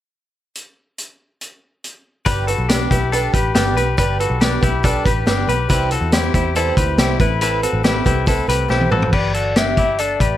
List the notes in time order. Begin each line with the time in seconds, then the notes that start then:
0.55 closed hi-hat
0.98 closed hi-hat
1.41 closed hi-hat
1.84 closed hi-hat
2.25 G1 G3 D4 G4 B4, kick, closed hi-hat
2.47 D4 F#4 G4 A4 B4, closed hi-hat
2.58 B1
2.69 G3 D4 G4 B4, snare, closed hi-hat
2.91 B1 D4 E4 G4 B4, kick, closed hi-hat
3.12 G3 D4 G4 A4 B4, closed hi-hat
3.33 A1 D4 G4 B4, kick, closed hi-hat
3.54 G1 G3 D4 G4 B4, snare, closed hi-hat
3.76 B1 D4 G4 B4, closed hi-hat
3.97 G1 G3 D4 G4 B4, kick, closed hi-hat
4.19 D4 F#4 G4 A4 B4, closed hi-hat
4.30 B1
4.40 G3 D4 G4 B4, snare, closed hi-hat
4.61 B1 D4 E4 G4 B4, kick, closed hi-hat
4.83 G3 D4 G4 A4 B4, kick, closed hi-hat
5.04 A1 D4 G4 B4, kick, closed hi-hat
5.26 G1 G3 D4 G4 B4, snare, closed hi-hat
5.48 B1 D4 G4 B4, closed hi-hat
5.69 C2 C3 E3 G3 C4 E4 G4 B4 C5, kick, closed hi-hat
5.91 G3 C4 E4 F#4 A4 C5, closed hi-hat
6.01 E2
6.12 G3 C4 E4 G4 C5, snare, closed hi-hat
6.34 E2 G3 C4 E4 G4 C5, kick, closed hi-hat
6.55 C3 E3 G3 C4 E4 A4 C5, closed hi-hat
6.77 D2 G3 C4 E4 G4 B4 C5, kick, closed hi-hat
6.98 C2 G3 C4 E4 G4 C5, snare, closed hi-hat
7.19 A1 A3 C4 E4 A4 B4, kick, closed hi-hat
7.41 A2 E3 A3 C4 E4 A4 B4, closed hi-hat
7.62 A3 C4 F#4 A4 B4, closed hi-hat
7.73 A1
7.83 A3 C4 E4 G4 A4 B4, snare, closed hi-hat
8.04 C2 A3 C4 E4 G4 A4 B4, kick, closed hi-hat
8.26 A2 E3 A3 C4 E4 A4 B4, kick, closed hi-hat
8.47 C2 A3 C4 G4 A4 B4, closed hi-hat
8.68 B1 A3 C4 E4 G4 A4 B4 C5, snare
8.81 high tom
8.90 A1 A3 C4 F#4 A4 B4, mid tom
9.02 floor tom
9.13 G1 G4 B4 D5, kick, crash
9.34 F#4 A4, closed hi-hat
9.56 D4 G4 E5, snare, closed hi-hat
9.77 E4 G4, kick, closed hi-hat
9.98 D4 A4 D5, closed hi-hat
10.20 A1 G4 B4, kick, closed hi-hat